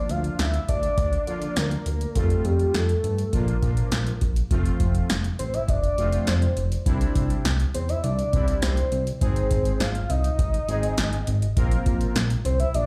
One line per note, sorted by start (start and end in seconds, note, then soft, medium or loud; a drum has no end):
0.00 0.45 F3 medium
0.00 0.45 A#3 medium
0.00 0.45 D4 medium
0.00 0.45 F4 medium
0.00 0.12 D5 loud
0.09 0.30 D2 loud
0.09 0.41 F5 loud
0.09 closed hi-hat medium
0.24 closed hi-hat soft
0.39 0.60 D2 loud
0.39 0.68 E5 loud
0.39 snare loud
0.39 closed hi-hat medium
0.54 closed hi-hat soft
0.69 0.89 D2 medium
0.69 1.58 D5 loud
0.69 kick medium
0.69 closed hi-hat medium
0.83 closed hi-hat soft
0.97 1.18 D2 loud
0.97 kick medium
0.97 closed hi-hat medium
1.13 closed hi-hat soft
1.27 1.48 D3 loud
1.27 1.74 F3 medium
1.27 1.74 A#3 medium
1.27 1.74 D4 medium
1.27 1.74 F4 medium
1.27 closed hi-hat medium
1.42 closed hi-hat medium
1.56 1.77 D2 loud
1.56 2.17 A#4 loud
1.56 snare loud
1.56 closed hi-hat medium
1.71 closed hi-hat soft
1.86 2.07 D2 loud
1.86 closed hi-hat medium
2.01 closed hi-hat medium
2.15 2.36 F2 loud
2.15 2.78 G3 medium
2.15 2.78 A3 medium
2.15 2.78 C4 medium
2.15 2.78 F4 medium
2.15 2.46 A4 loud
2.15 kick loud
2.15 closed hi-hat medium
2.30 closed hi-hat medium
2.45 2.66 F2 loud
2.45 2.76 G4 medium
2.45 closed hi-hat medium
2.59 closed hi-hat soft
2.74 2.95 F2 loud
2.74 3.35 A4 loud
2.74 snare loud
2.74 closed hi-hat medium
2.89 closed hi-hat soft
3.04 3.24 G2 medium
3.04 closed hi-hat medium
3.18 closed hi-hat soft
3.33 3.54 A#1 loud
3.33 3.57 F3 medium
3.33 3.57 A#3 medium
3.33 3.57 D4 medium
3.33 3.57 F4 medium
3.33 4.21 A#4 loud
3.33 kick medium
3.33 closed hi-hat medium
3.48 closed hi-hat soft
3.62 3.83 A#2 loud
3.62 4.09 F3 medium
3.62 4.09 A#3 medium
3.62 4.09 D4 medium
3.62 4.09 F4 medium
3.62 kick medium
3.62 closed hi-hat medium
3.77 closed hi-hat medium
3.92 4.12 A#1 loud
3.92 snare loud
3.92 closed hi-hat medium
4.07 closed hi-hat soft
4.21 4.42 A#1 medium
4.21 kick medium
4.21 closed hi-hat medium
4.36 closed hi-hat medium
4.51 4.71 F1 loud
4.51 5.13 F3 medium
4.51 5.13 A3 medium
4.51 5.13 C4 medium
4.51 5.13 F4 loud
4.51 kick loud
4.51 closed hi-hat medium
4.66 closed hi-hat medium
4.80 5.01 F1 loud
4.80 kick medium
4.80 closed hi-hat medium
4.95 closed hi-hat soft
5.10 5.30 F1 medium
5.10 snare loud
5.10 closed hi-hat medium
5.24 closed hi-hat soft
5.39 5.60 A1 medium
5.39 5.55 C5 medium
5.39 closed hi-hat medium
5.54 5.70 E5 loud
5.54 closed hi-hat soft
5.68 5.89 F1 loud
5.68 6.29 D5 loud
5.68 kick medium
5.68 closed hi-hat medium
5.84 closed hi-hat soft
5.98 6.19 F1 loud
5.98 6.45 F3 medium
5.98 6.44 A3 medium
5.98 6.45 C4 medium
5.98 6.44 F4 medium
5.98 closed hi-hat medium
6.13 closed hi-hat medium
6.27 6.48 F1 loud
6.27 6.71 C5 medium
6.27 snare loud
6.27 closed hi-hat medium
6.42 closed hi-hat soft
6.57 6.77 F1 medium
6.57 closed hi-hat medium
6.72 closed hi-hat medium
6.86 7.07 C2 loud
6.86 7.48 G3 medium
6.86 7.48 C4 medium
6.86 7.48 D4 medium
6.86 7.48 E4 loud
6.86 kick loud
6.86 closed hi-hat medium
7.01 closed hi-hat medium
7.15 7.36 C2 loud
7.15 kick medium
7.15 closed hi-hat medium
7.30 closed hi-hat soft
7.45 7.66 C2 loud
7.45 snare loud
7.45 closed hi-hat medium
7.60 closed hi-hat soft
7.74 7.95 E2 medium
7.74 7.91 C5 medium
7.74 closed hi-hat medium
7.89 8.03 E5 medium
7.89 closed hi-hat medium
8.04 8.24 C2 loud
8.04 8.58 D5 loud
8.04 closed hi-hat medium
8.19 closed hi-hat soft
8.33 8.54 C2 loud
8.33 8.80 G3 medium
8.33 8.80 C4 medium
8.33 8.80 D4 medium
8.33 8.80 E4 medium
8.33 kick loud
8.33 closed hi-hat medium
8.48 closed hi-hat medium
8.62 8.83 C2 loud
8.62 9.03 C5 medium
8.62 snare loud
8.62 closed hi-hat medium
8.77 closed hi-hat soft
8.92 9.13 C2 medium
8.92 closed hi-hat medium
9.07 closed hi-hat medium
9.21 9.42 G#1 loud
9.21 9.83 G#3 medium
9.21 9.84 C4 medium
9.21 9.84 D#4 medium
9.21 9.84 G#4 medium
9.21 9.82 C5 loud
9.21 kick loud
9.21 closed hi-hat medium
9.36 closed hi-hat soft
9.51 9.71 G#1 loud
9.51 kick medium
9.51 closed hi-hat medium
9.65 closed hi-hat soft
9.80 10.01 G#1 loud
9.80 10.11 F5 loud
9.80 snare loud
9.80 closed hi-hat medium
9.95 closed hi-hat soft
10.09 10.30 C2 medium
10.09 11.27 D#5 loud
10.09 closed hi-hat medium
10.24 closed hi-hat medium
10.39 10.59 G#1 loud
10.39 kick medium
10.39 closed hi-hat medium
10.54 closed hi-hat soft
10.68 10.89 G#1 loud
10.68 11.15 G#3 medium
10.68 11.15 C4 medium
10.68 11.15 D#4 medium
10.68 11.15 G#4 medium
10.68 closed hi-hat medium
10.83 closed hi-hat medium
10.98 11.19 G#1 loud
10.98 snare loud
10.98 closed hi-hat medium
11.13 closed hi-hat medium
11.27 11.48 G#1 loud
11.27 closed hi-hat medium
11.42 closed hi-hat medium
11.57 11.77 A#1 loud
11.57 12.19 A#3 medium
11.57 12.19 C4 medium
11.57 12.19 F4 medium
11.57 12.19 A#4 loud
11.57 kick loud
11.57 closed hi-hat medium
11.71 closed hi-hat medium
11.86 12.07 A#1 loud
11.86 kick medium
11.86 closed hi-hat medium
12.01 closed hi-hat soft
12.16 12.36 A#1 loud
12.16 snare loud
12.16 closed hi-hat medium
12.30 closed hi-hat medium
12.45 12.66 C2 medium
12.45 12.59 C5 medium
12.45 closed hi-hat medium
12.60 12.76 E5 loud
12.60 closed hi-hat medium
12.74 12.86 A#1 loud
12.74 12.86 D5 loud
12.74 closed hi-hat medium